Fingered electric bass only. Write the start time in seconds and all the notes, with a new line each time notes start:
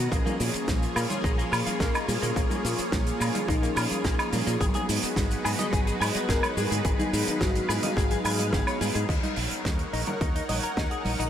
0.12 A#1
0.40 A#2
0.54 muted fingered electric bass stroke
0.68 A#1
0.96 A#2
1.24 A#1
1.52 A#2
1.66 muted fingered electric bass stroke
1.80 A#1
2.08 A#2
2.22 A#2
2.36 A#1
2.65 A#2
2.79 muted fingered electric bass stroke
2.92 A#1
3.21 A#2
3.48 A#1
3.77 A#2
3.91 muted fingered electric bass stroke
4.05 A#1
4.33 A#2
4.47 A#2
4.61 G#1
4.89 G#2
5.03 muted fingered electric bass stroke
5.17 G#1
5.45 G#2
5.73 G#1
6.01 G#2
6.15 muted fingered electric bass stroke
6.29 G#1
6.57 G#2
6.71 G#2
6.85 G#1
7.13 G#2
7.28 muted fingered electric bass stroke
7.41 G#1
7.69 G#2
7.97 G#1
8.25 G#2
8.53 G#1
8.81 G#2
8.95 G#2
9.09 D#2
9.37 A#1
9.52 muted fingered electric bass stroke
9.65 D#2
9.93 A#1
10.21 D#2
10.49 A#1
10.64 muted fingered electric bass stroke
10.77 D#2
11.05 A#1
11.20 A#1